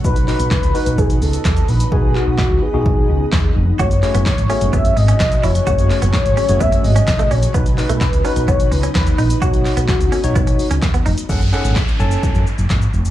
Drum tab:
HH |-xox-xox-xox-xox|----------------|-xox-xox-xox-xox|-xox-xox-xox-xox|
SH |xxxxxxxxxxxxxxxx|----------------|xxxxxxxxxxxxxxxx|xxxxxxxxxxxxxxxx|
CP |--x-x-------x---|--x-x-------x---|--x-x-------x---|--x-x-------x---|
SD |----o-------o---|----o-------o---|----o-------o---|----o-------o---|
BD |o---o---o---o---|o---o---o---o---|o---o---o---o---|o---o---o---o---|

HH |-xox-xox-xox-xox|-xox-xox-xox-xox|----------------|
SH |xxxxxxxxxxxxxxxx|xxxxxxxxxxxxxxxx|xxxxxxxxxxxxxxxx|
CP |--x-x-------x---|--x-x-------x---|--x-x-------x---|
SD |----o-------o---|----o-------o---|----o-------o---|
BD |o---o---o---o---|o---o---o---o---|o---o---o---o---|